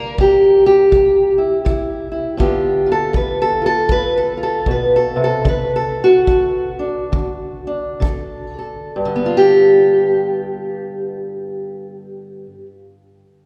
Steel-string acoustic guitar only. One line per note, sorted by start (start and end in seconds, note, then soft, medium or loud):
0.00 0.14 C3 medium
0.00 2.39 A#3 soft
0.00 0.65 D4 loud
0.00 0.20 A#4 medium
0.19 0.87 C3 medium
0.19 0.65 G4 medium
0.66 2.39 G4 medium
0.91 1.60 C3 medium
1.38 1.64 E4 soft
1.65 2.34 C3 medium
1.65 2.10 E4 medium
2.12 2.37 E4 soft
2.37 3.08 G2 medium
2.37 5.43 D3 medium
2.37 5.42 B3 medium
2.37 2.85 F4 medium
2.37 2.90 G4 medium
2.86 3.60 F4 soft
2.92 3.16 A4 medium
3.13 3.83 G2 medium
3.13 3.40 B4 medium
3.42 3.65 A4 medium
3.62 4.36 F4 soft
3.66 3.91 A4 loud
3.88 4.60 G2 medium
3.88 4.16 B4 medium
4.17 4.42 A4 medium
4.37 5.42 F4 soft
4.43 4.68 A4 medium
4.67 5.16 B2 medium
4.67 4.95 B4 medium
4.96 5.21 A4 medium
5.16 5.46 C3 medium
5.24 5.48 A4 medium
5.45 6.21 D3 medium
5.45 5.74 B4 medium
5.76 6.86 A4 medium
6.04 8.66 F#4 medium
6.28 7.06 D3 medium
6.79 7.66 D4 soft
7.12 7.95 D3 medium
7.67 8.91 D4 soft
8.00 8.88 D3 medium
8.00 8.57 A4 medium
8.59 8.91 A4 soft
8.96 12.46 G2 medium
9.05 12.55 D3 medium
9.16 12.66 B3 medium
9.26 12.76 F4 medium
9.37 12.72 G4 loud